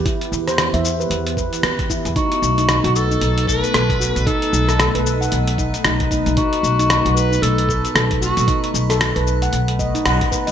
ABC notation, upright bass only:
X:1
M:4/4
L:1/16
Q:"Swing 16ths" 1/4=114
K:Bphr
V:1 name="Upright bass" clef=bass
z2 E,,3 E,,3 E,,3 z E,,3 E,, | z2 B,,,3 B,,,3 B,,,3 z B,,,3 B,,, | z2 B,,,3 B,,,3 B,,,3 z B,,,3 B,,, | z2 B,,,3 B,,,3 B,,,3 z B,,,3 B,,, |
z2 B,,,3 B,,,3 B,,,3 z B,,, z2 F,,, |]